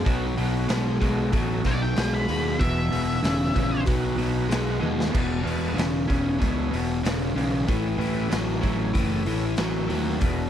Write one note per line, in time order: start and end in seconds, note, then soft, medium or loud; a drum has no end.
0.05 0.34 B1 medium
0.05 0.34 B2 medium
0.05 0.34 F#3 medium
0.05 0.27 B3 medium
0.05 0.26 D#4 medium
0.05 0.27 F#4 medium
0.05 0.27 B4 medium
0.05 kick loud
0.05 open hi-hat medium
0.36 0.66 B1 medium
0.36 0.66 B2 medium
0.36 0.66 F#3 medium
0.36 0.79 B3 medium
0.36 0.79 D#4 medium
0.36 0.79 F#4 medium
0.36 0.79 B4 medium
0.36 open hi-hat medium
0.68 0.98 B1 medium
0.68 0.97 B2 medium
0.68 0.97 G#3 medium
0.68 snare loud
0.68 open hi-hat medium
1.00 1.30 B1 medium
1.00 1.29 B2 medium
1.00 1.29 G#3 medium
1.00 1.85 B3 medium
1.00 1.85 D#4 medium
1.00 1.85 F#4 medium
1.00 1.85 A4 loud
1.00 kick medium
1.00 open hi-hat medium
1.32 1.61 A1 medium
1.32 1.61 B2 medium
1.32 1.61 F#3 medium
1.32 kick loud
1.32 open hi-hat medium
1.64 1.93 B1 medium
1.64 1.93 B2 medium
1.64 1.93 F#3 medium
1.64 1.81 D5 loud
1.64 kick medium
1.64 snare soft
1.64 open hi-hat medium
1.82 2.12 G5 medium
1.96 2.25 B1 medium
1.96 2.24 B2 medium
1.96 2.25 G#3 medium
1.96 snare loud
1.96 open hi-hat medium
2.14 2.59 B5 medium
2.28 2.57 D#2 medium
2.28 2.57 B2 medium
2.28 2.57 G#3 medium
2.28 open hi-hat medium
2.59 2.89 E1 medium
2.59 2.88 E2 medium
2.59 2.88 B2 medium
2.59 2.82 B3 medium
2.59 2.82 E4 medium
2.59 2.82 B4 medium
2.59 3.83 E5 loud
2.59 kick loud
2.59 open hi-hat medium
2.63 2.82 G#4 medium
2.90 3.20 E1 medium
2.90 3.19 E2 medium
2.90 3.20 B2 medium
2.90 3.33 B3 medium
2.90 3.33 E4 medium
2.90 3.34 G#4 medium
2.90 3.33 B4 medium
2.90 open hi-hat medium
3.23 3.51 E1 medium
3.23 3.51 E2 medium
3.23 3.52 C#3 medium
3.23 snare loud
3.23 open hi-hat medium
3.54 3.84 A#1 medium
3.54 3.83 E2 medium
3.54 3.83 C#3 medium
3.54 3.85 B3 medium
3.54 3.87 E4 medium
3.54 3.87 G#4 medium
3.54 3.86 B4 loud
3.54 kick medium
3.54 open hi-hat medium
3.85 4.15 B1 medium
3.85 4.15 B2 medium
3.85 4.15 F#3 loud
3.85 4.88 B3 medium
3.85 4.88 D#4 medium
3.85 4.88 F#4 medium
3.85 4.88 B4 loud
3.85 kick loud
3.85 open hi-hat medium
4.18 4.47 B1 medium
4.18 4.46 B2 medium
4.18 4.47 F#3 medium
4.18 open hi-hat medium
4.49 4.78 B1 medium
4.49 4.78 B2 medium
4.49 4.78 G#3 medium
4.49 snare loud
4.49 open hi-hat medium
4.80 5.10 D#2 medium
4.80 5.09 B2 medium
4.80 5.10 G#3 medium
4.80 high tom medium
5.00 snare medium
5.10 5.41 E2 medium
5.10 5.41 B2 medium
5.10 5.34 B3 medium
5.10 5.34 E4 medium
5.10 5.34 G#4 medium
5.10 5.34 B4 medium
5.15 5.42 E1 medium
5.15 kick loud
5.15 crash medium
5.43 5.73 E1 medium
5.43 5.73 E2 medium
5.43 5.73 B2 medium
5.43 5.87 B3 medium
5.43 5.87 E4 medium
5.43 5.87 G#4 medium
5.43 5.87 B4 medium
5.47 open hi-hat medium
5.75 6.05 E1 medium
5.75 6.04 E2 medium
5.75 6.05 C#3 medium
5.75 open hi-hat medium
5.80 snare loud
6.07 6.38 E1 medium
6.07 6.37 E2 medium
6.07 6.37 C#3 medium
6.07 6.92 B3 medium
6.07 6.92 E4 medium
6.07 6.92 G#4 medium
6.07 6.92 C#5 medium
6.07 kick medium
6.07 open hi-hat medium
6.38 6.69 C#2 medium
6.38 6.68 E2 medium
6.38 6.68 B2 medium
6.38 kick medium
6.38 open hi-hat medium
6.71 7.01 E1 medium
6.71 7.00 E2 medium
6.71 7.00 B2 medium
6.71 open hi-hat medium
7.03 7.32 E1 medium
7.03 7.32 E2 medium
7.03 7.32 C#3 medium
7.03 snare loud
7.03 open hi-hat medium
7.35 7.69 B1 medium
7.35 7.64 E2 medium
7.35 7.64 C#3 medium
7.35 open hi-hat medium
7.66 7.97 A1 medium
7.66 7.96 A2 medium
7.66 7.97 E3 medium
7.66 7.88 C#4 medium
7.66 7.88 E4 medium
7.66 7.88 A4 medium
7.66 7.88 C#5 medium
7.66 kick loud
7.66 open hi-hat medium
7.97 8.27 A1 medium
7.97 8.28 A2 medium
7.97 8.27 E3 medium
7.97 8.41 C#4 medium
7.97 8.40 E4 medium
7.97 8.40 A4 medium
7.97 8.40 B4 medium
7.97 open hi-hat medium
8.30 8.59 A1 medium
8.30 8.59 A2 medium
8.30 8.59 F#3 medium
8.30 snare loud
8.30 open hi-hat medium
8.61 8.92 A1 medium
8.61 8.90 A2 medium
8.61 8.91 F#3 medium
8.61 9.46 C#4 medium
8.61 9.46 E4 medium
8.61 9.46 A4 medium
8.61 9.46 C#5 medium
8.61 8.92 G#5 medium
8.61 kick medium
8.61 open hi-hat medium
8.93 9.23 F#1 medium
8.93 9.23 A2 medium
8.93 9.22 E3 medium
8.93 9.24 A5 medium
8.93 kick medium
8.93 open hi-hat medium
9.26 9.54 A1 medium
9.26 9.55 A2 medium
9.26 9.55 E3 medium
9.26 9.56 G#5 medium
9.26 open hi-hat soft
9.57 9.86 A1 medium
9.57 9.86 A2 medium
9.57 9.86 F#3 medium
9.57 9.74 F#5 medium
9.57 snare loud
9.57 open hi-hat medium
9.77 10.20 E5 medium
9.88 10.18 D#2 medium
9.88 10.17 A2 medium
9.88 10.18 F#3 medium
9.88 open hi-hat soft
10.20 10.50 E1 medium
10.20 10.49 E2 medium
10.20 10.49 B2 medium
10.20 kick loud
10.20 open hi-hat medium
10.24 10.44 B3 medium
10.24 10.43 E4 medium
10.24 10.44 G#4 medium
10.24 10.43 B4 medium